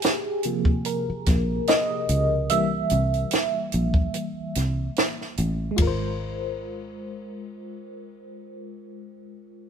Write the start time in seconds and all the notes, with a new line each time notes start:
Already playing: G4 G#4
0.02 snare, closed hi-hat
0.43 C3 F3 A#3, closed hi-hat
0.65 kick
0.85 A#4, closed hi-hat
1.10 muted fingered electric bass stroke
1.26 A#1, kick, snare, closed hi-hat
1.67 D#5, snare, closed hi-hat
2.09 C#2, closed hi-hat
2.50 C2 E3 G3 A#3 E5, closed hi-hat
2.90 C2, closed hi-hat
3.14 closed hi-hat
3.31 snare, closed hi-hat
3.72 A#1, closed hi-hat
3.94 kick
4.14 closed hi-hat
4.55 C2, snare, closed hi-hat
4.96 snare, closed hi-hat
5.21 snare
5.37 A1, closed hi-hat
5.71 G#3
5.76 G#1 F4, kick, ride
5.82 A#4
5.87 C5